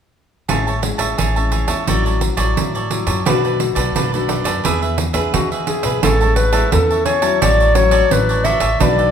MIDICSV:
0, 0, Header, 1, 7, 480
1, 0, Start_track
1, 0, Key_signature, 3, "major"
1, 0, Tempo, 692042
1, 342, Time_signature, 4, 2, 24, 8
1, 6320, End_track
2, 0, Start_track
2, 0, Title_t, "Cavaquinho"
2, 0, Program_c, 0, 24
2, 336, Note_on_c, 0, 68, 58
2, 341, Note_on_c, 0, 73, 59
2, 345, Note_on_c, 0, 76, 68
2, 347, Note_on_c, 0, 81, 72
2, 450, Note_off_c, 0, 68, 0
2, 452, Note_off_c, 0, 73, 0
2, 454, Note_off_c, 0, 76, 0
2, 455, Note_off_c, 0, 81, 0
2, 464, Note_on_c, 0, 81, 41
2, 469, Note_on_c, 0, 76, 34
2, 475, Note_on_c, 0, 73, 34
2, 563, Note_off_c, 0, 73, 0
2, 564, Note_off_c, 0, 76, 0
2, 566, Note_off_c, 0, 81, 0
2, 681, Note_on_c, 0, 81, 49
2, 687, Note_on_c, 0, 76, 58
2, 692, Note_on_c, 0, 73, 50
2, 802, Note_off_c, 0, 81, 0
2, 805, Note_off_c, 0, 76, 0
2, 808, Note_off_c, 0, 73, 0
2, 817, Note_on_c, 0, 68, 58
2, 821, Note_on_c, 0, 73, 51
2, 826, Note_on_c, 0, 76, 58
2, 829, Note_on_c, 0, 81, 63
2, 930, Note_off_c, 0, 68, 0
2, 932, Note_off_c, 0, 73, 0
2, 935, Note_off_c, 0, 76, 0
2, 935, Note_off_c, 0, 81, 0
2, 943, Note_on_c, 0, 81, 40
2, 949, Note_on_c, 0, 76, 36
2, 955, Note_on_c, 0, 73, 29
2, 1047, Note_off_c, 0, 73, 0
2, 1050, Note_on_c, 0, 68, 47
2, 1051, Note_off_c, 0, 76, 0
2, 1053, Note_off_c, 0, 81, 0
2, 1056, Note_on_c, 0, 73, 47
2, 1059, Note_on_c, 0, 76, 50
2, 1063, Note_on_c, 0, 81, 54
2, 1154, Note_off_c, 0, 81, 0
2, 1160, Note_off_c, 0, 76, 0
2, 1162, Note_on_c, 0, 81, 59
2, 1167, Note_off_c, 0, 68, 0
2, 1167, Note_off_c, 0, 73, 0
2, 1168, Note_on_c, 0, 76, 52
2, 1175, Note_on_c, 0, 73, 49
2, 1283, Note_off_c, 0, 81, 0
2, 1286, Note_off_c, 0, 76, 0
2, 1290, Note_off_c, 0, 73, 0
2, 1299, Note_on_c, 0, 66, 60
2, 1303, Note_on_c, 0, 69, 65
2, 1308, Note_on_c, 0, 73, 63
2, 1311, Note_on_c, 0, 74, 66
2, 1411, Note_off_c, 0, 66, 0
2, 1414, Note_off_c, 0, 69, 0
2, 1414, Note_off_c, 0, 74, 0
2, 1416, Note_off_c, 0, 73, 0
2, 1422, Note_on_c, 0, 74, 38
2, 1430, Note_on_c, 0, 73, 34
2, 1435, Note_on_c, 0, 69, 30
2, 1527, Note_off_c, 0, 69, 0
2, 1528, Note_off_c, 0, 73, 0
2, 1531, Note_off_c, 0, 74, 0
2, 1643, Note_on_c, 0, 74, 59
2, 1650, Note_on_c, 0, 73, 47
2, 1655, Note_on_c, 0, 69, 45
2, 1884, Note_off_c, 0, 74, 0
2, 1887, Note_off_c, 0, 73, 0
2, 1890, Note_off_c, 0, 69, 0
2, 1905, Note_on_c, 0, 74, 49
2, 1912, Note_on_c, 0, 73, 39
2, 1916, Note_on_c, 0, 69, 36
2, 2117, Note_off_c, 0, 74, 0
2, 2122, Note_off_c, 0, 73, 0
2, 2125, Note_on_c, 0, 74, 49
2, 2129, Note_off_c, 0, 69, 0
2, 2131, Note_on_c, 0, 73, 40
2, 2137, Note_on_c, 0, 69, 41
2, 2245, Note_off_c, 0, 74, 0
2, 2248, Note_off_c, 0, 73, 0
2, 2251, Note_off_c, 0, 69, 0
2, 2257, Note_on_c, 0, 62, 59
2, 2262, Note_on_c, 0, 69, 64
2, 2266, Note_on_c, 0, 71, 71
2, 2269, Note_on_c, 0, 74, 67
2, 2371, Note_off_c, 0, 62, 0
2, 2374, Note_off_c, 0, 69, 0
2, 2376, Note_off_c, 0, 71, 0
2, 2377, Note_off_c, 0, 74, 0
2, 2385, Note_on_c, 0, 74, 39
2, 2392, Note_on_c, 0, 71, 40
2, 2397, Note_on_c, 0, 69, 38
2, 2489, Note_off_c, 0, 69, 0
2, 2490, Note_off_c, 0, 71, 0
2, 2492, Note_off_c, 0, 74, 0
2, 2602, Note_on_c, 0, 74, 54
2, 2608, Note_on_c, 0, 71, 49
2, 2614, Note_on_c, 0, 69, 48
2, 2724, Note_off_c, 0, 74, 0
2, 2726, Note_off_c, 0, 71, 0
2, 2730, Note_off_c, 0, 69, 0
2, 2738, Note_on_c, 0, 62, 53
2, 2744, Note_on_c, 0, 69, 56
2, 2747, Note_on_c, 0, 71, 69
2, 2751, Note_on_c, 0, 74, 68
2, 2852, Note_off_c, 0, 62, 0
2, 2854, Note_off_c, 0, 74, 0
2, 2855, Note_off_c, 0, 69, 0
2, 2856, Note_off_c, 0, 71, 0
2, 2862, Note_on_c, 0, 74, 42
2, 2870, Note_on_c, 0, 71, 38
2, 2874, Note_on_c, 0, 69, 31
2, 2965, Note_off_c, 0, 69, 0
2, 2969, Note_off_c, 0, 71, 0
2, 2970, Note_on_c, 0, 62, 43
2, 2972, Note_off_c, 0, 74, 0
2, 2973, Note_on_c, 0, 69, 47
2, 2977, Note_on_c, 0, 71, 49
2, 2980, Note_on_c, 0, 74, 55
2, 3073, Note_off_c, 0, 74, 0
2, 3080, Note_off_c, 0, 71, 0
2, 3081, Note_on_c, 0, 74, 59
2, 3084, Note_off_c, 0, 69, 0
2, 3088, Note_off_c, 0, 62, 0
2, 3088, Note_on_c, 0, 71, 52
2, 3093, Note_on_c, 0, 69, 48
2, 3203, Note_off_c, 0, 74, 0
2, 3207, Note_off_c, 0, 71, 0
2, 3209, Note_off_c, 0, 69, 0
2, 3216, Note_on_c, 0, 62, 62
2, 3221, Note_on_c, 0, 68, 59
2, 3224, Note_on_c, 0, 71, 67
2, 3229, Note_on_c, 0, 76, 76
2, 3331, Note_off_c, 0, 62, 0
2, 3333, Note_off_c, 0, 68, 0
2, 3335, Note_off_c, 0, 71, 0
2, 3335, Note_off_c, 0, 76, 0
2, 3343, Note_on_c, 0, 76, 42
2, 3349, Note_on_c, 0, 71, 39
2, 3354, Note_on_c, 0, 68, 32
2, 3445, Note_off_c, 0, 68, 0
2, 3445, Note_off_c, 0, 71, 0
2, 3449, Note_off_c, 0, 76, 0
2, 3560, Note_on_c, 0, 76, 56
2, 3567, Note_on_c, 0, 71, 49
2, 3572, Note_on_c, 0, 68, 50
2, 3803, Note_off_c, 0, 76, 0
2, 3806, Note_off_c, 0, 71, 0
2, 3809, Note_off_c, 0, 68, 0
2, 3826, Note_on_c, 0, 76, 45
2, 3833, Note_on_c, 0, 71, 36
2, 3838, Note_on_c, 0, 68, 36
2, 4035, Note_off_c, 0, 76, 0
2, 4043, Note_off_c, 0, 71, 0
2, 4044, Note_on_c, 0, 76, 43
2, 4049, Note_off_c, 0, 68, 0
2, 4051, Note_on_c, 0, 71, 44
2, 4057, Note_on_c, 0, 68, 36
2, 4165, Note_off_c, 0, 76, 0
2, 4168, Note_off_c, 0, 71, 0
2, 4171, Note_off_c, 0, 68, 0
2, 4181, Note_on_c, 0, 68, 65
2, 4186, Note_on_c, 0, 73, 62
2, 4189, Note_on_c, 0, 76, 69
2, 4192, Note_on_c, 0, 81, 73
2, 4293, Note_off_c, 0, 68, 0
2, 4296, Note_off_c, 0, 73, 0
2, 4297, Note_off_c, 0, 76, 0
2, 4299, Note_off_c, 0, 81, 0
2, 4309, Note_on_c, 0, 81, 46
2, 4316, Note_on_c, 0, 76, 37
2, 4320, Note_on_c, 0, 73, 38
2, 4518, Note_off_c, 0, 81, 0
2, 4524, Note_off_c, 0, 76, 0
2, 4526, Note_on_c, 0, 81, 53
2, 4530, Note_off_c, 0, 73, 0
2, 4533, Note_on_c, 0, 76, 52
2, 4538, Note_on_c, 0, 73, 45
2, 4646, Note_off_c, 0, 81, 0
2, 4649, Note_off_c, 0, 76, 0
2, 4652, Note_off_c, 0, 73, 0
2, 4789, Note_on_c, 0, 81, 42
2, 4795, Note_on_c, 0, 76, 42
2, 4800, Note_on_c, 0, 73, 37
2, 4890, Note_off_c, 0, 73, 0
2, 4893, Note_on_c, 0, 68, 53
2, 4894, Note_off_c, 0, 76, 0
2, 4897, Note_off_c, 0, 81, 0
2, 4899, Note_on_c, 0, 73, 51
2, 4903, Note_on_c, 0, 76, 50
2, 4906, Note_on_c, 0, 81, 53
2, 5000, Note_off_c, 0, 81, 0
2, 5005, Note_off_c, 0, 76, 0
2, 5008, Note_on_c, 0, 81, 71
2, 5009, Note_off_c, 0, 68, 0
2, 5012, Note_off_c, 0, 73, 0
2, 5013, Note_on_c, 0, 76, 59
2, 5020, Note_on_c, 0, 73, 52
2, 5126, Note_off_c, 0, 81, 0
2, 5129, Note_off_c, 0, 76, 0
2, 5132, Note_off_c, 0, 73, 0
2, 5143, Note_on_c, 0, 66, 65
2, 5150, Note_on_c, 0, 69, 67
2, 5153, Note_on_c, 0, 73, 67
2, 5156, Note_on_c, 0, 74, 72
2, 5254, Note_off_c, 0, 66, 0
2, 5257, Note_off_c, 0, 69, 0
2, 5259, Note_off_c, 0, 73, 0
2, 5260, Note_off_c, 0, 74, 0
2, 5270, Note_on_c, 0, 74, 40
2, 5276, Note_on_c, 0, 73, 39
2, 5282, Note_on_c, 0, 69, 35
2, 5370, Note_off_c, 0, 69, 0
2, 5373, Note_off_c, 0, 73, 0
2, 5375, Note_off_c, 0, 74, 0
2, 5491, Note_on_c, 0, 74, 61
2, 5498, Note_on_c, 0, 73, 53
2, 5501, Note_on_c, 0, 69, 50
2, 5728, Note_off_c, 0, 74, 0
2, 5731, Note_off_c, 0, 73, 0
2, 5733, Note_off_c, 0, 69, 0
2, 5749, Note_on_c, 0, 74, 46
2, 5756, Note_on_c, 0, 73, 43
2, 5761, Note_on_c, 0, 69, 44
2, 5851, Note_off_c, 0, 69, 0
2, 5855, Note_off_c, 0, 73, 0
2, 5855, Note_on_c, 0, 66, 67
2, 5857, Note_off_c, 0, 74, 0
2, 5860, Note_on_c, 0, 69, 72
2, 5864, Note_on_c, 0, 73, 75
2, 5868, Note_on_c, 0, 74, 79
2, 5956, Note_off_c, 0, 74, 0
2, 5964, Note_off_c, 0, 73, 0
2, 5965, Note_on_c, 0, 74, 47
2, 5969, Note_off_c, 0, 69, 0
2, 5970, Note_off_c, 0, 66, 0
2, 5972, Note_on_c, 0, 73, 46
2, 5977, Note_on_c, 0, 69, 41
2, 6084, Note_off_c, 0, 74, 0
2, 6088, Note_off_c, 0, 73, 0
2, 6091, Note_off_c, 0, 69, 0
2, 6102, Note_on_c, 0, 62, 62
2, 6107, Note_on_c, 0, 69, 68
2, 6111, Note_on_c, 0, 71, 70
2, 6113, Note_on_c, 0, 74, 67
2, 6213, Note_off_c, 0, 62, 0
2, 6216, Note_off_c, 0, 69, 0
2, 6217, Note_off_c, 0, 71, 0
2, 6219, Note_off_c, 0, 74, 0
2, 6228, Note_on_c, 0, 74, 41
2, 6234, Note_on_c, 0, 71, 42
2, 6239, Note_on_c, 0, 69, 39
2, 6320, Note_off_c, 0, 69, 0
2, 6320, Note_off_c, 0, 71, 0
2, 6320, Note_off_c, 0, 74, 0
2, 6320, End_track
3, 0, Start_track
3, 0, Title_t, "Clarinet"
3, 0, Program_c, 1, 71
3, 3707, Note_on_c, 1, 66, 69
3, 3814, Note_off_c, 1, 66, 0
3, 3937, Note_on_c, 1, 68, 78
3, 4164, Note_off_c, 1, 68, 0
3, 4183, Note_on_c, 1, 69, 79
3, 4407, Note_off_c, 1, 69, 0
3, 4409, Note_on_c, 1, 71, 90
3, 4640, Note_off_c, 1, 71, 0
3, 4665, Note_on_c, 1, 69, 88
3, 4888, Note_off_c, 1, 69, 0
3, 4893, Note_on_c, 1, 73, 83
3, 5143, Note_on_c, 1, 74, 96
3, 5154, Note_off_c, 1, 73, 0
3, 5376, Note_on_c, 1, 73, 103
3, 5387, Note_off_c, 1, 74, 0
3, 5632, Note_on_c, 1, 71, 90
3, 5642, Note_off_c, 1, 73, 0
3, 5861, Note_on_c, 1, 76, 94
3, 5871, Note_off_c, 1, 71, 0
3, 6102, Note_off_c, 1, 76, 0
3, 6113, Note_on_c, 1, 74, 97
3, 6320, Note_off_c, 1, 74, 0
3, 6320, End_track
4, 0, Start_track
4, 0, Title_t, "Nylon-string guitar"
4, 0, Program_c, 2, 24
4, 338, Note_on_c, 2, 45, 50
4, 342, Note_on_c, 2, 56, 49
4, 343, Note_on_c, 2, 61, 50
4, 346, Note_on_c, 2, 64, 51
4, 482, Note_off_c, 2, 56, 0
4, 484, Note_off_c, 2, 61, 0
4, 485, Note_off_c, 2, 64, 0
4, 571, Note_on_c, 2, 56, 45
4, 576, Note_on_c, 2, 61, 48
4, 576, Note_on_c, 2, 64, 51
4, 797, Note_off_c, 2, 45, 0
4, 802, Note_off_c, 2, 56, 0
4, 804, Note_off_c, 2, 61, 0
4, 805, Note_off_c, 2, 64, 0
4, 821, Note_on_c, 2, 52, 44
4, 946, Note_on_c, 2, 56, 55
4, 951, Note_on_c, 2, 61, 51
4, 953, Note_on_c, 2, 64, 53
4, 1267, Note_off_c, 2, 56, 0
4, 1268, Note_off_c, 2, 61, 0
4, 1270, Note_off_c, 2, 64, 0
4, 1279, Note_off_c, 2, 52, 0
4, 1299, Note_on_c, 2, 45, 47
4, 1300, Note_on_c, 2, 54, 48
4, 1302, Note_on_c, 2, 61, 47
4, 1305, Note_on_c, 2, 64, 51
4, 1623, Note_off_c, 2, 54, 0
4, 1624, Note_off_c, 2, 61, 0
4, 1626, Note_off_c, 2, 64, 0
4, 1644, Note_on_c, 2, 54, 47
4, 1650, Note_on_c, 2, 64, 47
4, 1758, Note_off_c, 2, 45, 0
4, 1782, Note_on_c, 2, 45, 49
4, 1976, Note_off_c, 2, 54, 0
4, 1979, Note_off_c, 2, 64, 0
4, 2012, Note_on_c, 2, 54, 43
4, 2015, Note_on_c, 2, 61, 45
4, 2018, Note_on_c, 2, 64, 55
4, 2220, Note_off_c, 2, 54, 0
4, 2221, Note_off_c, 2, 61, 0
4, 2223, Note_off_c, 2, 64, 0
4, 2239, Note_off_c, 2, 45, 0
4, 2260, Note_on_c, 2, 47, 53
4, 2262, Note_on_c, 2, 62, 48
4, 2263, Note_on_c, 2, 57, 53
4, 2267, Note_on_c, 2, 66, 57
4, 2464, Note_off_c, 2, 57, 0
4, 2466, Note_off_c, 2, 62, 0
4, 2467, Note_off_c, 2, 66, 0
4, 2491, Note_on_c, 2, 57, 52
4, 2493, Note_on_c, 2, 62, 49
4, 2499, Note_on_c, 2, 66, 51
4, 2719, Note_off_c, 2, 47, 0
4, 2744, Note_on_c, 2, 42, 50
4, 2820, Note_off_c, 2, 57, 0
4, 2821, Note_off_c, 2, 62, 0
4, 2823, Note_off_c, 2, 66, 0
4, 2870, Note_on_c, 2, 57, 48
4, 2873, Note_on_c, 2, 62, 51
4, 2877, Note_on_c, 2, 66, 58
4, 3189, Note_off_c, 2, 57, 0
4, 3191, Note_off_c, 2, 62, 0
4, 3192, Note_off_c, 2, 66, 0
4, 3201, Note_off_c, 2, 42, 0
4, 3222, Note_on_c, 2, 52, 46
4, 3225, Note_on_c, 2, 59, 48
4, 3226, Note_on_c, 2, 62, 48
4, 3230, Note_on_c, 2, 68, 62
4, 3449, Note_off_c, 2, 59, 0
4, 3451, Note_off_c, 2, 62, 0
4, 3452, Note_off_c, 2, 68, 0
4, 3564, Note_on_c, 2, 59, 50
4, 3567, Note_on_c, 2, 62, 52
4, 3570, Note_on_c, 2, 68, 49
4, 3680, Note_off_c, 2, 52, 0
4, 3702, Note_on_c, 2, 47, 48
4, 3896, Note_off_c, 2, 59, 0
4, 3897, Note_off_c, 2, 62, 0
4, 3899, Note_off_c, 2, 68, 0
4, 3934, Note_on_c, 2, 59, 43
4, 3938, Note_on_c, 2, 62, 44
4, 3939, Note_on_c, 2, 68, 50
4, 4081, Note_off_c, 2, 59, 0
4, 4082, Note_off_c, 2, 62, 0
4, 4083, Note_off_c, 2, 68, 0
4, 4159, Note_off_c, 2, 47, 0
4, 4183, Note_on_c, 2, 45, 54
4, 4185, Note_on_c, 2, 56, 53
4, 4187, Note_on_c, 2, 61, 48
4, 4190, Note_on_c, 2, 64, 56
4, 4256, Note_off_c, 2, 56, 0
4, 4258, Note_off_c, 2, 61, 0
4, 4259, Note_off_c, 2, 64, 0
4, 4309, Note_on_c, 2, 56, 50
4, 4312, Note_on_c, 2, 61, 49
4, 4315, Note_on_c, 2, 64, 49
4, 4508, Note_off_c, 2, 56, 0
4, 4510, Note_off_c, 2, 61, 0
4, 4511, Note_off_c, 2, 64, 0
4, 4524, Note_on_c, 2, 56, 52
4, 4529, Note_on_c, 2, 61, 54
4, 4532, Note_on_c, 2, 64, 55
4, 4617, Note_off_c, 2, 56, 0
4, 4618, Note_off_c, 2, 61, 0
4, 4620, Note_off_c, 2, 64, 0
4, 4640, Note_off_c, 2, 45, 0
4, 4661, Note_on_c, 2, 52, 49
4, 4664, Note_on_c, 2, 61, 49
4, 4668, Note_on_c, 2, 64, 48
4, 4986, Note_off_c, 2, 61, 0
4, 4988, Note_off_c, 2, 64, 0
4, 5005, Note_on_c, 2, 54, 60
4, 5008, Note_on_c, 2, 61, 51
4, 5011, Note_on_c, 2, 64, 66
4, 5119, Note_off_c, 2, 52, 0
4, 5143, Note_on_c, 2, 45, 47
4, 5336, Note_off_c, 2, 54, 0
4, 5338, Note_off_c, 2, 61, 0
4, 5338, Note_off_c, 2, 64, 0
4, 5375, Note_on_c, 2, 54, 62
4, 5377, Note_on_c, 2, 61, 52
4, 5381, Note_on_c, 2, 64, 61
4, 5581, Note_off_c, 2, 54, 0
4, 5582, Note_off_c, 2, 61, 0
4, 5583, Note_off_c, 2, 64, 0
4, 5599, Note_off_c, 2, 45, 0
4, 5622, Note_on_c, 2, 45, 52
4, 5624, Note_on_c, 2, 54, 52
4, 5625, Note_on_c, 2, 61, 59
4, 5629, Note_on_c, 2, 64, 63
4, 5932, Note_off_c, 2, 54, 0
4, 5934, Note_off_c, 2, 61, 0
4, 5935, Note_off_c, 2, 64, 0
4, 6079, Note_off_c, 2, 45, 0
4, 6102, Note_on_c, 2, 47, 59
4, 6104, Note_on_c, 2, 57, 59
4, 6106, Note_on_c, 2, 62, 50
4, 6108, Note_on_c, 2, 66, 61
4, 6305, Note_off_c, 2, 57, 0
4, 6306, Note_off_c, 2, 62, 0
4, 6307, Note_off_c, 2, 66, 0
4, 6320, Note_off_c, 2, 47, 0
4, 6320, End_track
5, 0, Start_track
5, 0, Title_t, "Upright bass"
5, 0, Program_c, 3, 32
5, 342, Note_on_c, 3, 33, 77
5, 649, Note_off_c, 3, 33, 0
5, 683, Note_on_c, 3, 33, 65
5, 794, Note_off_c, 3, 33, 0
5, 822, Note_on_c, 3, 33, 71
5, 1129, Note_off_c, 3, 33, 0
5, 1167, Note_on_c, 3, 40, 72
5, 1276, Note_off_c, 3, 40, 0
5, 1304, Note_on_c, 3, 33, 86
5, 1610, Note_off_c, 3, 33, 0
5, 1645, Note_on_c, 3, 33, 68
5, 1755, Note_off_c, 3, 33, 0
5, 1783, Note_on_c, 3, 45, 74
5, 2090, Note_off_c, 3, 45, 0
5, 2127, Note_on_c, 3, 42, 67
5, 2236, Note_off_c, 3, 42, 0
5, 2264, Note_on_c, 3, 35, 80
5, 2570, Note_off_c, 3, 35, 0
5, 2608, Note_on_c, 3, 35, 69
5, 2717, Note_off_c, 3, 35, 0
5, 2744, Note_on_c, 3, 35, 80
5, 3050, Note_off_c, 3, 35, 0
5, 3088, Note_on_c, 3, 42, 74
5, 3197, Note_off_c, 3, 42, 0
5, 3224, Note_on_c, 3, 40, 85
5, 3530, Note_off_c, 3, 40, 0
5, 3568, Note_on_c, 3, 40, 65
5, 3677, Note_off_c, 3, 40, 0
5, 3704, Note_on_c, 3, 52, 82
5, 4010, Note_off_c, 3, 52, 0
5, 4050, Note_on_c, 3, 35, 79
5, 4158, Note_off_c, 3, 35, 0
5, 4186, Note_on_c, 3, 33, 83
5, 4593, Note_off_c, 3, 33, 0
5, 4667, Note_on_c, 3, 40, 80
5, 5074, Note_off_c, 3, 40, 0
5, 5148, Note_on_c, 3, 33, 88
5, 5554, Note_off_c, 3, 33, 0
5, 5629, Note_on_c, 3, 33, 76
5, 5932, Note_off_c, 3, 33, 0
5, 5972, Note_on_c, 3, 33, 77
5, 6079, Note_off_c, 3, 33, 0
5, 6108, Note_on_c, 3, 35, 93
5, 6320, Note_off_c, 3, 35, 0
5, 6320, End_track
6, 0, Start_track
6, 0, Title_t, "Muted cavaquinho strokes"
6, 569, Note_on_c, 9, 29, 31
6, 639, Note_off_c, 9, 29, 0
6, 1532, Note_on_c, 9, 29, 29
6, 1601, Note_off_c, 9, 29, 0
6, 2494, Note_on_c, 9, 29, 29
6, 2563, Note_off_c, 9, 29, 0
6, 3451, Note_on_c, 9, 29, 32
6, 3521, Note_off_c, 9, 29, 0
6, 4664, Note_on_c, 9, 29, 32
6, 4734, Note_off_c, 9, 29, 0
6, 5377, Note_on_c, 9, 29, 37
6, 5446, Note_off_c, 9, 29, 0
6, 6320, End_track
7, 0, Start_track
7, 0, Title_t, "Pandeiro"
7, 339, Note_on_c, 9, 54, 69
7, 408, Note_off_c, 9, 54, 0
7, 468, Note_on_c, 9, 54, 26
7, 537, Note_off_c, 9, 54, 0
7, 575, Note_on_c, 9, 54, 54
7, 644, Note_off_c, 9, 54, 0
7, 686, Note_on_c, 9, 54, 58
7, 755, Note_off_c, 9, 54, 0
7, 821, Note_on_c, 9, 54, 65
7, 891, Note_off_c, 9, 54, 0
7, 945, Note_on_c, 9, 54, 30
7, 1015, Note_off_c, 9, 54, 0
7, 1052, Note_on_c, 9, 54, 51
7, 1121, Note_off_c, 9, 54, 0
7, 1164, Note_on_c, 9, 54, 59
7, 1233, Note_off_c, 9, 54, 0
7, 1300, Note_on_c, 9, 54, 68
7, 1370, Note_off_c, 9, 54, 0
7, 1429, Note_on_c, 9, 54, 29
7, 1499, Note_off_c, 9, 54, 0
7, 1534, Note_on_c, 9, 54, 52
7, 1603, Note_off_c, 9, 54, 0
7, 1646, Note_on_c, 9, 54, 56
7, 1715, Note_off_c, 9, 54, 0
7, 1784, Note_on_c, 9, 54, 67
7, 1853, Note_off_c, 9, 54, 0
7, 1909, Note_on_c, 9, 54, 29
7, 1978, Note_off_c, 9, 54, 0
7, 2016, Note_on_c, 9, 54, 51
7, 2085, Note_off_c, 9, 54, 0
7, 2128, Note_on_c, 9, 54, 57
7, 2197, Note_off_c, 9, 54, 0
7, 2263, Note_on_c, 9, 54, 73
7, 2332, Note_off_c, 9, 54, 0
7, 2390, Note_on_c, 9, 54, 26
7, 2459, Note_off_c, 9, 54, 0
7, 2496, Note_on_c, 9, 54, 50
7, 2566, Note_off_c, 9, 54, 0
7, 2609, Note_on_c, 9, 54, 59
7, 2678, Note_off_c, 9, 54, 0
7, 2745, Note_on_c, 9, 54, 65
7, 2814, Note_off_c, 9, 54, 0
7, 2871, Note_on_c, 9, 54, 31
7, 2940, Note_off_c, 9, 54, 0
7, 2975, Note_on_c, 9, 54, 56
7, 3044, Note_off_c, 9, 54, 0
7, 3088, Note_on_c, 9, 54, 63
7, 3157, Note_off_c, 9, 54, 0
7, 3224, Note_on_c, 9, 54, 74
7, 3293, Note_off_c, 9, 54, 0
7, 3346, Note_on_c, 9, 54, 29
7, 3415, Note_off_c, 9, 54, 0
7, 3453, Note_on_c, 9, 54, 59
7, 3522, Note_off_c, 9, 54, 0
7, 3565, Note_on_c, 9, 54, 63
7, 3634, Note_off_c, 9, 54, 0
7, 3702, Note_on_c, 9, 54, 74
7, 3771, Note_off_c, 9, 54, 0
7, 3827, Note_on_c, 9, 54, 30
7, 3897, Note_off_c, 9, 54, 0
7, 3933, Note_on_c, 9, 54, 53
7, 4002, Note_off_c, 9, 54, 0
7, 4045, Note_on_c, 9, 54, 63
7, 4114, Note_off_c, 9, 54, 0
7, 4182, Note_on_c, 9, 54, 76
7, 4251, Note_off_c, 9, 54, 0
7, 4304, Note_on_c, 9, 54, 28
7, 4374, Note_off_c, 9, 54, 0
7, 4412, Note_on_c, 9, 54, 55
7, 4481, Note_off_c, 9, 54, 0
7, 4527, Note_on_c, 9, 54, 63
7, 4596, Note_off_c, 9, 54, 0
7, 4662, Note_on_c, 9, 54, 67
7, 4732, Note_off_c, 9, 54, 0
7, 4789, Note_on_c, 9, 54, 29
7, 4859, Note_off_c, 9, 54, 0
7, 4893, Note_on_c, 9, 54, 54
7, 4963, Note_off_c, 9, 54, 0
7, 5008, Note_on_c, 9, 54, 58
7, 5078, Note_off_c, 9, 54, 0
7, 5145, Note_on_c, 9, 54, 82
7, 5215, Note_off_c, 9, 54, 0
7, 5273, Note_on_c, 9, 54, 31
7, 5343, Note_off_c, 9, 54, 0
7, 5377, Note_on_c, 9, 54, 64
7, 5446, Note_off_c, 9, 54, 0
7, 5488, Note_on_c, 9, 54, 57
7, 5558, Note_off_c, 9, 54, 0
7, 5627, Note_on_c, 9, 54, 69
7, 5696, Note_off_c, 9, 54, 0
7, 5751, Note_on_c, 9, 54, 30
7, 5820, Note_off_c, 9, 54, 0
7, 5859, Note_on_c, 9, 54, 59
7, 5928, Note_off_c, 9, 54, 0
7, 5968, Note_on_c, 9, 54, 62
7, 6037, Note_off_c, 9, 54, 0
7, 6107, Note_on_c, 9, 54, 77
7, 6176, Note_off_c, 9, 54, 0
7, 6233, Note_on_c, 9, 54, 27
7, 6303, Note_off_c, 9, 54, 0
7, 6320, End_track
0, 0, End_of_file